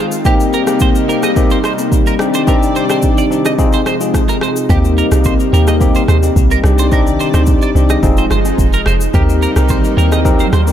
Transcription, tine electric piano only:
0.25 A#3 C4 D#4 G4
0.67 A#3 C4 D#4 G4
1.08 A#3 C4 D#4 G4
1.36 A#3 C4 D#4 G4
1.78 A#3 C4 D#4 G4
2.19 C4 D4 D#4 G4
2.47 C4 D4 D#4 G4
2.89 C4 D4 D#4 G4
3.30 C4 D4 D#4 G4
3.58 C4 D#4 F4 G#4
4.00 C4 D#4 F4 G#4
4.69 A#3 C4 D#4 G4
5.11 A#3 C4 D#4 G4
5.53 A#3 C4 D#4 G4
5.80 A#3 C4 D#4 G4
6.23 A#3 C4 D#4 G4
6.64 C4 D4 D#4 G4
6.92 C4 D4 D#4 G4
7.34 C4 D4 D#4 G4
7.75 C4 D4 D#4 G4
8.03 C4 D#4 F4 G#4
8.45 C4 D#4 F4 G#4
9.14 C4 D#4 G4 A#4
9.56 C4 D#4 G4 A#4
9.97 C4 D#4 G4 A#4
10.25 C4 D#4 G4 A#4
10.67 C4 D#4 G4 A#4

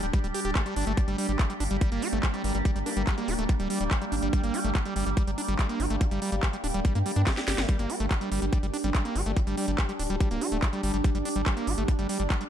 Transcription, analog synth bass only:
0.03 D1
0.24 D1
0.45 D1
0.76 G1
0.87 G1
1.08 G1
1.29 G1
1.60 G1
1.71 G1
1.92 G1
2.13 G1
2.44 G1
2.55 G1
2.76 G1
2.97 G1
3.28 D1
3.39 D1
3.60 D1
3.81 D1
4.12 G1
4.23 G1
4.44 G1
4.65 G1
4.96 G1
5.06 G1
5.27 G1
5.48 G1
5.80 G1
5.90 G1
6.11 G1
6.32 G1
6.64 D1
6.74 D1
6.95 G2
7.16 G2
7.48 G1
7.58 G1
7.79 G1
8.00 G1
8.32 G1
8.42 G1
8.63 G1
8.84 G1
9.16 G1
9.26 G1
9.47 G1
9.68 G1
9.99 D1
10.10 D1
10.31 D1
10.52 D1
10.83 G1
10.94 G1
11.15 G1
11.36 G1
11.67 G1
11.78 G1
11.99 G1
12.20 G1

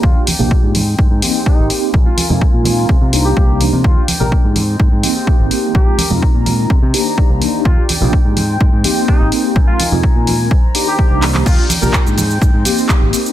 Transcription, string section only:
Already playing: D#3
0.03 D5 G5
0.75 G#3 C4 G5
1.94 F4 A#4 G#5
2.89 C5 A#5
3.84 D#3 D5 G5
4.56 G#3 C4 G5
5.75 D#3 A#4 A#5
6.70 C5 A#5
7.65 D5 G5
8.37 G#3 C4
9.56 D#4 A#4 G#5
10.51 D#3 C5 A#5
11.46 D5 G5
12.18 G#3 C4

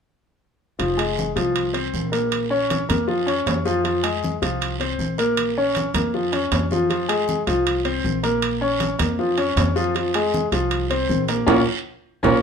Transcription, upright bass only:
0.79 F1
1.36 C2
1.94 A#1
2.89 F2
3.46 F2
4.42 C2
4.99 A#1
5.94 F2
6.52 F2
7.47 C2
8.04 A#1
9.00 F2
9.56 F2
10.52 C2
11.09 A#1
11.47 A#1
12.23 A#1

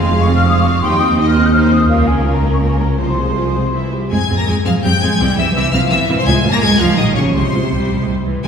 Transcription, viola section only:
Already playing: C4 F4
0.12 G#3 G#4
0.29 C4 F4
0.47 G#3 G#4
0.65 C4 F4
0.83 D#4 G4
1.01 C4 D#4
1.18 D#4 G4
1.36 C4 D#4
1.53 D#4 G4
1.71 C4 D#4
1.89 A#3 F4
2.07 C#4
2.25 A#3 F4
2.43 C#4
2.61 A#3 F4
2.79 C#4
2.99 F3 F4
3.18 G#3 G#4
3.36 F3 F4
3.55 G#3 G#4
3.73 E3 E4
3.92 G3 G4
4.10 C4 G#4
4.29 C4 G#4
4.48 C4 G#4
4.65 C4 G#4
4.84 C4 G#4
5.02 C4 G#4
5.20 C4 E4
5.38 C4 E4
5.56 C4 E4
5.73 C4 E4
5.92 C4 E4
6.09 C4 E4
6.27 G#3 F4
6.44 G#3 F4
6.61 G#3 F4
6.79 G#3 F4
6.98 G3 F4
7.16 G3 F4
7.34 G#3 F4
7.53 G#3 F4
7.71 G3
7.99 G#3
8.08 G3
8.26 E3
8.44 C4 F4

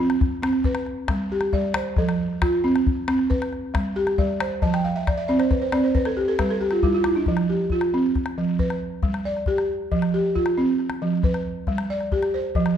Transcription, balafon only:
Already playing: F4
0.00 C4
0.42 C4
0.65 B4
1.10 G3
1.32 G4
1.53 G3 D5
1.76 C5
1.98 F3 A4
2.42 F4
2.64 C4
3.08 C4
3.30 B4
3.74 G3
3.96 G4
4.18 G3 D5
4.41 C5
4.62 F3 A5
4.74 G5
4.84 F5
4.96 E5
5.07 D5
5.17 E5
5.28 C4 D5
5.39 C5
5.51 B4
5.62 C5
5.72 C4 D5
5.84 C5
5.95 B4
6.06 A4
6.17 G4
6.28 A4
6.39 G3 B4
6.50 A4
6.61 G4
6.72 F4
6.83 G3 E4
6.94 F4
7.05 E4
7.16 D4
7.28 F3
7.49 G4
7.72 F4
7.94 C4
8.38 F3
8.59 B4
9.03 G3
9.25 D5
9.47 G4
9.92 F3
10.14 G4
10.35 F4
10.58 C4
11.02 F3
11.24 B4
11.68 G3
11.90 D5
12.12 G4
12.34 C5
12.56 F3

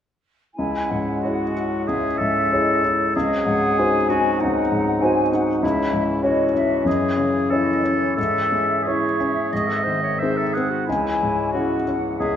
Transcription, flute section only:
0.55 G#5
0.89 F#5
1.87 E5
2.52 D#5
2.83 C#5
3.15 D#5
3.45 F#5
3.77 G#5
4.39 F#5
5.01 G#5
5.31 F#5
5.63 E5
6.24 D#5
6.55 E5
6.86 D#5
7.20 C#5
7.52 D#5
7.83 C#5
8.19 E5
10.88 G#5
11.54 F#5
12.19 E5

